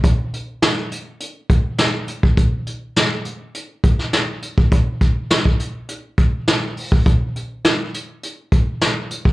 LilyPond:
\new DrumStaff \with { instrumentName = "Drums" } \drummode { \time 4/4 \tempo 4 = 103 <hh bd>8 hh8 <hh sn>8 hh8 hh8 <hh bd>8 <hh sn>8 hh16 bd16 | <hh bd>8 hh8 <hh sn>8 hh8 hh8 <hh bd>16 sn16 <hh sn>8 hh16 bd16 | <hh bd>8 <hh bd>8 <hh sn>16 bd16 hh8 hh8 <hh bd>8 <hh sn>8 hho16 bd16 | <hh bd>8 hh8 <hh sn>8 hh8 hh8 <hh bd>8 <hh sn>8 hh16 bd16 | }